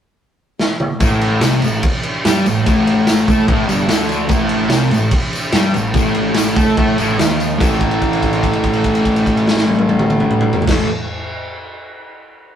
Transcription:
0.59 snare
0.80 mid tom
1.00 A1 A2, kick, tambourine, crash
1.21 crash
1.41 C2 C3, snare, tambourine, crash
1.62 A1 A2, tambourine, crash
1.83 kick, crash
2.03 crash
2.25 G2 G3, snare, tambourine, crash
2.46 A1 A2, tambourine, crash
2.66 A1 A2, kick, tambourine, crash
2.87 crash
3.07 snare, tambourine, crash
3.28 A2 A3, kick, tambourine, crash
3.47 A1 A2, kick, crash
3.67 G1 G2, tambourine, crash
3.88 D2 D3, snare, tambourine, crash
4.09 tambourine, crash
4.29 A1 A2, kick, tambourine, crash
4.49 crash
4.70 C2 C3, snare, tambourine, crash
4.91 A1 A2, tambourine, crash
5.11 kick, crash
5.33 tambourine, crash
5.52 G2 G3, snare, tambourine, crash
5.73 A1 A2, tambourine, crash
5.94 A1 A2, kick, tambourine, crash
6.14 crash
6.34 snare, tambourine, crash
6.55 A2 A3, kick, tambourine, crash
6.77 A2 A3, kick, crash
6.98 A1 A2, tambourine, crash
7.19 D#2 D#3, snare, tambourine, crash
7.40 tambourine, crash
7.58 A1 A2 E3, kick, crash
7.63 A3, tambourine
7.81 kick, crash
7.91 crash
8.02 kick, crash
8.13 crash
8.23 kick, crash
8.33 crash
8.43 kick, crash
8.53 crash
8.64 kick, crash
8.73 crash
8.84 kick, crash
8.95 crash
9.05 kick, crash
9.16 crash
9.26 kick, crash
9.37 crash
9.48 snare
9.57 snare
9.68 high tom
9.79 high tom
9.89 high tom
9.99 mid tom
10.10 mid tom
10.20 mid tom
10.31 mid tom
10.41 mid tom
10.53 floor tom
10.62 floor tom
10.67 A1 A2 E3 A3, kick, snare, crash

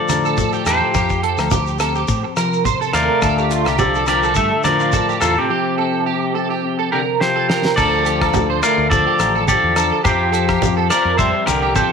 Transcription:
Already playing: D3 F3 A3 D4 A4 D5
0.08 A2 D3, muted clean electric guitar stroke, cross-stick, closed hi-hat, high conga, low agogo, shekere
0.25 A4, shekere
0.37 A4, kick, high conga, shekere
0.53 G4, shekere
0.66 E2 F3 G4 A4 C5, cross-stick, closed hi-hat, low agogo, shekere
0.94 F2 F3 G4, kick, cross-stick, low agogo, shekere
1.09 kick, shekere
1.23 G4 A4, closed hi-hat, muted conga
1.38 D2, cross-stick, low agogo, shekere
1.51 G4 C5, kick, high conga, shekere
1.67 shekere
1.79 C4 G4 A4, cross-stick, closed hi-hat, muted conga, low agogo, shekere
1.95 G4, shekere
2.07 A2 C5, kick, muted conga, shekere
2.24 muted clean electric guitar stroke
2.36 C3 F3 A#4 C5, cross-stick, closed hi-hat, low agogo, shekere
2.53 shekere
2.65 C5, kick, high conga, low conga, shekere
2.81 A4, shekere
2.93 D#2 A3 A#4 C5 D5 F5, cross-stick, closed hi-hat, low agogo, shekere
3.22 D2 D3 F4 A4, kick, cross-stick, low agogo, shekere
3.38 G4, shekere
3.51 D4 F4, closed hi-hat, muted conga, shekere
3.65 C2 G4, cross-stick, low agogo, shekere
3.79 F3 F4 A4 D5, kick, high conga, shekere
3.95 A4, shekere
4.07 F3 D4 G4 A#4 D5, cross-stick, closed hi-hat, muted conga, low agogo, shekere
4.23 A4, shekere
4.35 G2 A3 A4 E5, kick, shekere
4.52 muted clean electric guitar stroke
4.64 A2 D3 F3 F4 A#4 D5, cross-stick, closed hi-hat, high conga, low agogo, shekere
4.80 F4, shekere
4.92 A4, kick, high conga, shekere
5.09 G4, shekere
5.21 E2 C3 F4 A4, cross-stick, closed hi-hat, low agogo, shekere
5.38 C3 C4 G4
5.50 F3 C4 G4
5.78 C4 A4
6.06 C4 G4
6.35 C4 A4
6.50 G4
6.65 C4
6.79 A4
6.92 C3 D3 C4 G4 A#4
7.20 F3 G4 C5, snare
7.36 A4
7.49 A#4 C5, snare
7.65 snare
7.76 D2 D3 F3 A4 D5, kick, cross-stick, crash, low agogo, shekere
8.05 D4 G4, closed hi-hat, shekere
8.21 A4, kick, cross-stick, low agogo
8.34 D2 A3, kick, high conga, shekere
8.50 C5
8.62 A3 F4 A#4 D5 F5, cross-stick, closed hi-hat, muted conga, low agogo, shekere
8.78 D2
8.90 F3 A4 D5, kick, muted conga, high conga, shekere
9.07 G4
9.19 A1 F4, cross-stick, closed hi-hat, muted conga, low agogo, shekere
9.35 A4
9.48 F3 G4 A4 D5, muted clean electric guitar stroke, kick, high conga, shekere
9.63 E2
9.76 D4 A4, cross-stick, closed hi-hat, low agogo, shekere
9.92 A4
10.04 F2 F3 G4 C5, kick, cross-stick, muted conga, low agogo, shekere
10.32 G4 A4, closed hi-hat, shekere
10.48 G4, kick, cross-stick, low agogo
10.62 F2 C4, kick, high conga, shekere
10.77 A4
10.90 F3 A#4 C5 D5, cross-stick, closed hi-hat, muted conga, low agogo, shekere
11.05 F2
11.18 G3 A4 C5 E5, kick, muted conga, shekere
11.33 C5, muted clean electric guitar stroke
11.46 C2 D3 G4 A#4, cross-stick, closed hi-hat, muted conga, high conga, low agogo, shekere
11.62 G4
11.75 F3 C4 G4 A4 C5, kick, high conga, shekere

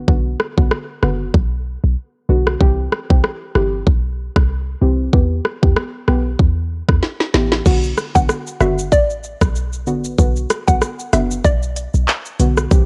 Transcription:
0.08 B1 D3 B3 F#4, kick
0.40 cross-stick
0.57 B1 D3 B3 F#4, kick
0.71 cross-stick
1.03 F#1 D3 B3 F#4, cross-stick
1.34 B1, kick
1.84 B1
2.29 B1 D3 B3 F#4
2.47 cross-stick
2.60 C2 E3 C4 G4, kick
2.92 cross-stick
3.10 C2 E3 C4 G4, kick
3.24 cross-stick
3.55 G1 E3 C4 G4, cross-stick
3.87 B1, kick
4.36 C2, kick, cross-stick
4.81 C2 E3 C4 G4
5.13 E2 E3 B3 G4, kick
5.45 cross-stick
5.62 E2 E3 B3 G4, kick
5.76 cross-stick
6.08 B1 E3 B3 G4, cross-stick
6.39 E2, kick
6.89 E2, kick, cross-stick
7.03 snare
7.20 snare
7.34 A1 E3 B3 G4, snare
7.52 snare
7.65 B1 D3 B3 F#4, kick, crash, shaker
7.83 shaker
7.97 cross-stick, shaker
8.15 B1 D3 B3 F#4 F#5, kick, shaker
8.29 cross-stick, shaker
8.47 shaker
8.60 F#1 D3 B3 F#4 E5, cross-stick, shaker
8.78 shaker
8.92 A1 D5, kick, shaker
9.10 shaker
9.24 shaker
9.41 B1, kick, cross-stick, shaker
9.55 shaker
9.73 shaker
9.87 A1 D3 B3 F#4, shaker
10.04 shaker
10.18 B1 D3 B3 F#4, kick, shaker
10.36 shaker
10.50 cross-stick, closed hi-hat, shaker
10.67 B1 D3 B3 F#4 F#5, kick, shaker
10.82 cross-stick, shaker
11.00 shaker
11.13 F#1 D3 B3 F#4 E5, cross-stick, closed hi-hat, shaker
11.31 shaker
11.45 B1 D5, kick, shaker
11.63 shaker
11.76 closed hi-hat, shaker
11.94 B1, shaker
12.08 clap, shaker
12.25 shaker
12.39 B1 D3 B3 F#4, closed hi-hat, shaker
12.57 cross-stick, shaker
12.71 C2 E3 C4 G4, kick, shaker

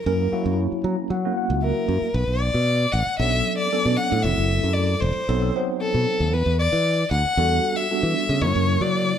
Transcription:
0.06 F#2 F#3 A#3 C#4 E4 A#4
0.32 F#3 A#3 C#4 E4 F#4, muted fingered electric bass stroke
0.46 F#2
0.72 muted fingered electric bass stroke
0.84 F#3 A#5
1.10 F#3 F#5
1.25 F#3 A#3 C#4 E4 F#4
1.37 F#5
1.50 C#2
1.62 A#4 E5
1.88 F#2
2.02 muted fingered electric bass stroke
2.14 B1 B4
2.28 B1
2.40 D5
2.54 B2
2.92 A1 F#5
3.07 muted fingered electric bass stroke
3.19 B1 F#3 B3 C#4 D4 A4 E5
3.58 D5
3.72 F#3 B3 C#4 D4 A4
3.85 B2
3.97 F#5
4.12 A2
4.22 F#1 F#3 A3 C4 E4 A4 E5
4.38 F#1
4.63 F#2
4.73 D5
5.01 E1 C5
5.16 muted fingered electric bass stroke
5.29 B1 F#3 B3 C4 D#4 A4
5.42 F#3 B3 C4 D#4 A4
5.56 F#3 B3 C4 D#4 C5
5.81 A4
5.94 B2
6.20 D#2
6.33 E2 B4
6.46 E2
6.59 D5
6.72 E3
7.11 D2 F#5
7.25 muted fingered electric bass stroke
7.37 E2 G3 B3 D4 F#4 A4
7.76 E5
7.91 G3 B3 D4 F#4 A4
8.03 E3
8.29 C#3
8.41 F#2 C#3 F#3 A#3 E4 A#4 C#5
8.56 F#2
8.81 F#3 D5

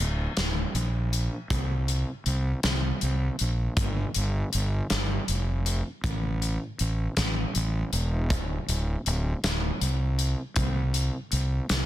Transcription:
0.00 D1
0.37 D1, snare, closed hi-hat
0.75 A#1, closed hi-hat
1.13 closed hi-hat
1.50 C2, kick, closed hi-hat
1.88 closed hi-hat
2.26 C2, closed hi-hat
2.63 C2, snare, closed hi-hat
3.01 C2, closed hi-hat
3.39 A#1, closed hi-hat
3.77 G1, kick, closed hi-hat
4.14 G1, closed hi-hat
4.53 G1, closed hi-hat
4.90 G1, snare, closed hi-hat
5.28 F1, closed hi-hat
5.66 closed hi-hat
6.04 A1, kick, closed hi-hat
6.42 closed hi-hat
6.79 A1, closed hi-hat
7.17 A1, kick, snare, closed hi-hat
7.55 A1, closed hi-hat
7.93 E1, closed hi-hat
8.30 D1, kick, closed hi-hat
8.69 D1, closed hi-hat
9.06 D1, closed hi-hat
9.44 D1, snare, closed hi-hat
9.81 C2, closed hi-hat
10.19 closed hi-hat
10.56 C2, kick, closed hi-hat
10.94 closed hi-hat
11.32 C2, closed hi-hat
11.69 C2, snare, closed hi-hat

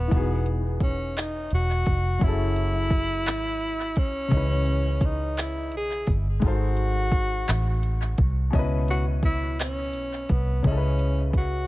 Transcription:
Already playing: B3 D#4 F#4 A4 D#5
0.08 E1 E3 B3, kick
0.12 D#4 F#4, closed hi-hat
0.17 G#4
0.46 closed hi-hat
0.80 C#4, kick, closed hi-hat
1.17 D#4, clap, closed hi-hat
1.51 E1 F#4, closed hi-hat
1.86 F1, kick, closed hi-hat
2.19 F#1 F#3 C#4, kick, closed hi-hat
2.24 E4 G#4
2.28 A4
2.56 closed hi-hat
2.90 kick, closed hi-hat
3.27 G#1, clap, closed hi-hat
3.61 closed hi-hat
3.96 C2 C#4, kick, closed hi-hat
4.28 C#2 C#3 C#4, kick, closed hi-hat
4.33 E3 D#5
4.37 B4
4.66 closed hi-hat
5.01 kick, closed hi-hat
5.05 D#4
5.37 E4, clap, closed hi-hat
5.72 B1, closed hi-hat
5.77 G#4
6.07 G1, kick, closed hi-hat
6.40 G#1 G#3 D#4 F#4, kick, closed hi-hat
6.46 F#4 A4 C5
6.77 closed hi-hat
7.12 kick, closed hi-hat
7.48 A1, clap, closed hi-hat
7.83 closed hi-hat
8.18 C2, kick, closed hi-hat
8.51 C#2 B2 C#4, kick, closed hi-hat
8.55 E4 B4 D#5
8.88 F#4, closed hi-hat
9.23 E4, kick, closed hi-hat
9.60 C#4, clap, closed hi-hat
9.93 B1, closed hi-hat
10.29 C2 B3, kick, closed hi-hat
10.63 C#2 C#3 C#4, kick, closed hi-hat
10.67 C#4 E4 D#5
10.71 A4
10.78 B4
10.99 closed hi-hat
11.33 kick, closed hi-hat
11.38 F#4

